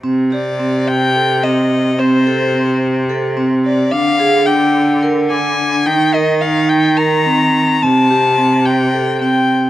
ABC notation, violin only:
X:1
M:7/8
L:1/8
Q:1/4=108
K:Cdor
V:1 name="Violin"
z d2 g2 e2 | c4 z2 d | f2 g2 z _a2 | g e f g b3 |
a3 g2 g2 |]